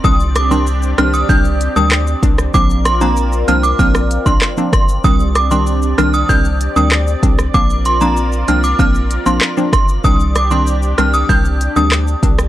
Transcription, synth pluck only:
X:1
M:4/4
L:1/16
Q:1/4=96
K:Cm
V:1 name="Synth pluck"
[E,G,CD]3 [E,G,CD]3 [E,G,CD]2 [E,G,CD] z2 [E,G,CD] z2 [E,G,CD] z | [F,B,CD]3 [F,B,CD]3 [F,B,CD]2 [F,B,CD] z2 [F,B,CD] z [F,B,CD] z2 | [E,G,CD]3 [E,G,CD]3 [E,G,CD]2 [E,G,CD] z2 [E,G,CD] z2 [E,G,CD] z | [F,B,CD]3 [F,B,CD]3 [F,B,CD]2 [F,B,CD] z2 [F,B,CD] z [F,B,CD] z2 |
[E,G,CD]3 [E,G,CD]3 [E,G,CD]2 [E,G,CD] z2 [E,G,CD] z2 [E,G,CD] z |]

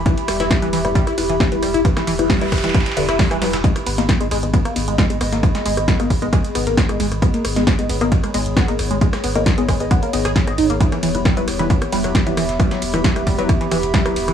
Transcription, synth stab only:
X:1
M:4/4
L:1/16
Q:1/4=134
K:G#m
V:1 name="Synth stab"
[=G,EB]2 z [G,EB] z [G,EB] z [G,EB] z2 [G,EB]2 z [G,EB] z2 | [=G,EB]2 z [G,EB] z [G,EB] z [G,EB] z2 [G,EB] z2 [G,EB] [G,EB]2 | [B,Gd]2 z [B,Gd] z [B,Gd] z [B,Gd] z2 [B,Gd]2 z [B,Gd] z2 | [B,Gd]2 z [B,Gd] z [B,Gd] z [B,Gd] z2 [B,Gd]2 z [B,Gd] z2 |
[B,Gd]2 z [B,Gd] z [B,Gd] z [B,Gd] z2 [B,Gd]2 z [B,Gd] z2 | [B,Gd]2 z [B,Gd] z [B,Gd] z [B,Gd] z2 [B,Gd]2 z [B,Gd] z2 | [=G,EB]2 z [G,EB] z [G,EB] z [G,EB] z2 [G,EB]2 z [G,EB] z2 | [=G,EB]2 z [G,EB] z [G,EB] z [G,EB] z2 [G,EB]2 z [G,EB] z2 |]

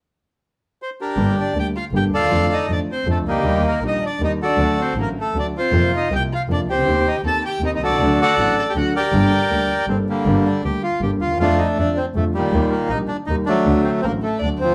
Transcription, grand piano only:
X:1
M:3/4
L:1/16
Q:1/4=158
K:Gm
V:1 name="Grand piano" clef=bass
z12 | [G,,,G,,D,G,B,G]2 z2 [D,,D,G,B,G]2 z2 [G,,,G,,D,G,B,G]2 z/2 D,,/2 E,,/2 =E,,/2 | [F,,D,F,A,F]2 z2 [F,,D,F,A,F]2 z2 [F,,D,F,A,F]2 z/2 C,,/2 ^C,,/2 D,,/2 | [E,,E,G,B,G]2 z2 [B,,,B,,E,G,B,G]2 z2 [E,,E,G,B,G]2 z2 |
[D,,D,^F,A,^F]2 z2 [A,,,A,,D,F,A,F]2 z2 [D,,D,F,A,F]2 z2 | [F,,C,F,B,F]2 z2 [C,,C,F,B,F]2 z2 [F,,C,F,B,F]2 z/2 C,,/2 ^C,,/2 D,,/2 | [E,,E,B,CG]2 z2 [E,,E,B,CG]2 z2 [E,,E,B,CG]2 z/2 =B,,,/2 C,,/2 ^C,,/2 | [D,,D,^F,A,DA]2 z2 [A,,,A,,F,A,DA]2 z2 [D,,D,F,A,DA]2 z2 |
[G,,,G,,G,B,DA]2 z2 [D,,D,G,B,DA]2 z2 [G,,,G,,G,B,DA]2 z2 | [G,,,G,,D,G,B,G]2 z2 [D,,D,G,B,G]2 z2 [G,,,G,,D,G,B,G]2 z/2 D,,/2 E,,/2 =E,,/2 | [F,,D,F,A,F]2 z2 [F,,D,F,A,F]2 z2 [F,,D,F,A,F]2 z2 | [E,,E,G,B,G]2 z2 [B,,,B,,E,G,B,G]2 z2 [E,,E,G,B,G]2 z2 |
[D,,D,^F,A,^F]2 z2 [A,,,A,,D,F,A,F]2 z2 [D,,D,F,A,F]2 z/2 D,,/2 E,,/2 z/2 |]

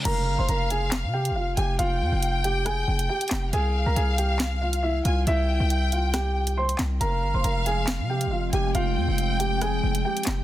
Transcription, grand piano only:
X:1
M:4/4
L:1/16
Q:1/4=138
K:Fm
V:1 name="Grand piano"
[Bb]3 [cc'] [Bb]2 [Aa]2 z2 [Gg]2 [Ff]2 [Gg]2 | [Ff]6 [Gg]2 [Aa]4 [Gg]4 | [Aa]3 [Bb] [Aa]2 [Gg]2 z2 [Ff]2 [=E=e]2 [Ff]2 | [=E=e]6 [Ff]2 [Gg]4 [cc']2 z2 |
[Bb]3 [cc'] [Bb]2 [Aa]2 z2 [Gg]2 [Ff]2 [Gg]2 | [Ff]6 [Gg]2 [Aa]4 [Gg]4 |]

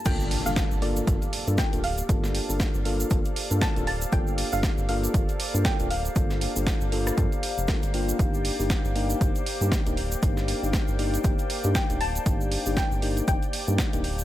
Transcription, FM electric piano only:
X:1
M:4/4
L:1/16
Q:"Swing 16ths" 1/4=118
K:Gm
V:1 name="FM electric piano"
[B,DFA]3 [B,DFA]3 [B,DFA]2 [B,DFA] z2 [B,DFA]2 [B,DFA] z2 | [B,DFA]3 [B,DFA]3 [B,DFA]2 [B,DFA] z2 [B,DFA]2 [B,DFA] z2 | [B,DFA]3 [B,DFA]3 [B,DFA]2 [B,DFA] z2 [B,DFA]2 [B,DFA] z2 | [B,DFA]3 [B,DFA]3 [B,DFA]2 [B,DFA] z3 [B,DFA] z [B,DFG]2 |
[B,DEG]3 [B,DEG]3 [B,DEG]2 [B,DEG] z2 [B,DEG]2 [B,DEG] z2 | [B,DEG]3 [B,DEG]3 [B,DEG]2 [B,DEG] z2 [B,DEG]2 [B,DEG] z2 | [B,DEG]3 [B,DEG]3 [B,DEG]2 [B,DEG] z2 [B,DEG]2 [B,DEG] z2 |]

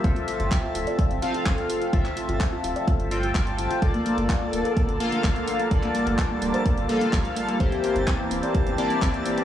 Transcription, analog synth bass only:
X:1
M:4/4
L:1/16
Q:1/4=127
K:F
V:1 name="Analog synth bass" clef=bass
G,,, z2 G,,, z2 D,,, z2 G,,, z2 G,,, z3 | G,,, z2 G,,, z2 D,,, z2 G,,,3 G,,,3 z | G,,, z2 G,,, z2 D,,, z2 G,,, z2 G,,, z3 | G,,, z2 G,,, z2 D,,, z2 G,,, z2 G,,, z3 |
G,,, z2 G,,, z2 D,,, z2 G,,, z2 G,,, z3 |]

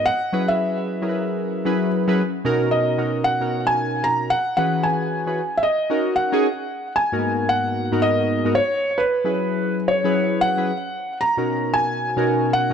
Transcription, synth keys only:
X:1
M:4/4
L:1/16
Q:"Swing 16ths" 1/4=113
K:G#m
V:1 name="Synth keys"
z2 [F,CEGB]4 z [F,CEGAB]4 z [F,CEGB]2 z [F,CEGB] | z2 [B,,CDFA]3 z [B,,CDFA]2 z [B,,CDFA]6 z | z2 [E,CFGB]4 z [E,CFGB] z4 [CDFA]2 z [CDFG] | z4 z [G,,A,B,DFA]4- [G,,A,B,DFA] z [G,,B,DFA]3 z [G,,B,DFA] |
z4 z [F,CEGB]4- [F,CEGB] z [F,CEGB]3 z [F,CEGB] | z4 z [B,,CDFA]4- [B,,CDFA] z [B,,CDFA]3 z [B,,C] |]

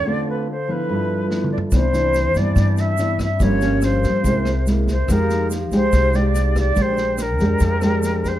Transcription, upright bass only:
X:1
M:4/4
L:1/8
Q:1/4=143
K:C
V:1 name="Upright bass" clef=bass
z8 | C,,3 G,, G,,4 | G,,,3 G,, C,,4 | F,,3 C,, C,,4 |
_B,,,3 F,, F,,4 |]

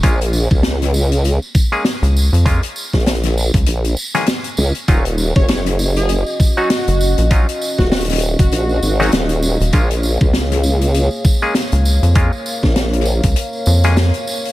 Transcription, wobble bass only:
X:1
M:4/4
L:1/16
Q:"Swing 16ths" 1/4=99
K:Bbphr
V:1 name="Wobble bass" clef=bass
B,,,3 D,,6 z6 z | z3 B,,,4 z B,,,2 z4 D,, z | E,,,3 G,,,6 z6 z | z3 E,,,4 z B,,,2 A,,,2 E,,,3 z |
B,,,3 D,,6 z6 z | z3 B,,,4 z8 z |]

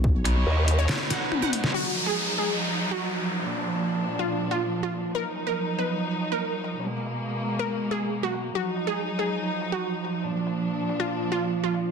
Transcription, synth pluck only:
X:1
M:4/4
L:1/16
Q:1/4=141
K:Ebm
V:1 name="Synth pluck"
z6 z ^c2 z ^f2 z f2 z | G2 z A2 z A2 z3 G2 z3 | z6 z F2 z F2 z F2 z | B2 z B2 z c2 z3 B2 z3 |
z6 z B2 z A2 z G2 z | G2 z A2 z A2 z3 G2 z3 | z6 z F2 z F2 z F2 z |]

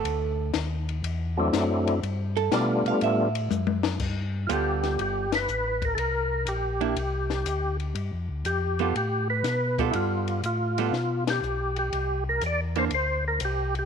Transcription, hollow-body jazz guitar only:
X:1
M:4/4
L:1/16
Q:"Swing" 1/4=121
K:Gmix
V:1 name="Hollow-body jazz guitar"
[A,A]4 z12 | z2 A2 d2 f2 e6- e z | z4 [G,B,FA]6 z6 | z6 [_B,DE]2 z8 |
z6 [G,B,FA]2 z6 [G,B,FA]2- | [G,B,FA]4 z2 [G,B,FA]2 z8 | z6 [E,_B,D]2 z8 |]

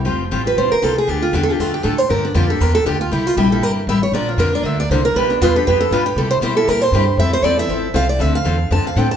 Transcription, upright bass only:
X:1
M:4/4
L:1/8
Q:"Swing" 1/4=236
K:F
V:1 name="Upright bass" clef=bass
F,,,2 A,,,2 B,,, z C,,2 | D,,2 E,,2 F,,2 A,,2 | G,,2 F,,2 E,,2 D,,2 | C,,2 B,,,2 G,,,2 A,,,2 |
B,,,2 F,,2 D,,2 C,,2 | =B,,,2 E,,2 F,,2 G,,2 | C,2 =B,,2 _B,,2 G,,2 | F,,2 E,,2 A,,,2 C,,2 |
[K:Dm] D,,2 E,,2 F,, z A,,2 |]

